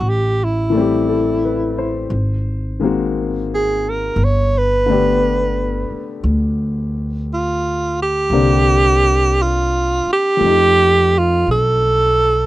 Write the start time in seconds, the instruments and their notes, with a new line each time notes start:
Already playing: alto saxophone F#4
0.01 upright bass A1
0.09 alto saxophone G4
0.44 alto saxophone E4
0.70 grand piano E3 A3
0.75 grand piano G3 C4
0.80 grand piano G4
1.09 grand piano A4
1.45 grand piano B4
1.78 grand piano C5
2.10 upright bass G#1
2.80 grand piano D#3 G#3 A#3
2.84 grand piano C4 F#4
3.54 alto saxophone G#4
3.89 alto saxophone A#4
4.16 upright bass G1
4.24 alto saxophone C#5
4.58 alto saxophone B4
4.86 grand piano D3 A3 B3 D4
4.92 grand piano G4
5.91 muted upright bass stroke
6.24 upright bass D2
7.33 alto saxophone F4
8.02 alto saxophone G4
8.30 upright bass C2, grand piano D3 A#3 D4 G4
8.34 grand piano C4
9.42 alto saxophone F4
10.06 muted upright bass stroke
10.13 alto saxophone G4
10.37 grand piano F3 A3
10.41 upright bass F2, grand piano C4
10.46 grand piano D#4 G4
11.18 alto saxophone F4
11.47 upright bass B1
11.51 alto saxophone A4